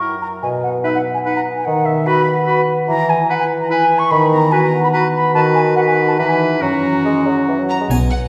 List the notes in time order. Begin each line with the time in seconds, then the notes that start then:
Already playing: F#2 A#3 E5 G5
0.01 E4 A#4
0.21 E5 A#5
0.42 B2 G#5
0.63 B3 F#5
0.84 D#4 B4 D#5 E5
0.94 F#5
1.05 F#5
1.14 G#5
1.24 D#4 B4 F#5
1.36 A#5
1.46 D#5
1.55 G#5
1.65 D#3 F#5
1.85 B3 E5
2.06 F#4 B4 B5
2.28 F#5
2.47 F#4 B4
2.68 F#4
2.88 E3 A#5
3.09 E4 G#5
3.29 E4 B4 F#5
3.40 G#5
3.50 B5
3.60 A#5
3.70 E4 B4 E5 G#5
3.90 B4
3.98 C#6
4.10 D#3 B5
4.31 B3 A#5
4.51 F#4 B4 G#5
4.62 A#5
4.72 F#5
4.83 B5
4.92 F#4 B4 A#5
5.13 F#4 B5
5.34 D#3 F#4 B4 A5
5.54 B3 G#5
5.75 F#4 B4 F#5
5.87 G#5
5.97 F#5
6.07 A5
6.18 E3 D#4 B4 A#5
6.27 G#5
6.39 D#4 G#4
6.60 F#2 F#3 C#4 F#4 A#5
6.82 F#3
7.05 G#3
7.26 F#3
7.47 E3 F#4
7.60 F#3
7.69 C#4 A#5
7.80 G#3
7.90 B1 B2 G#5, triangle
8.11 F#3 F#5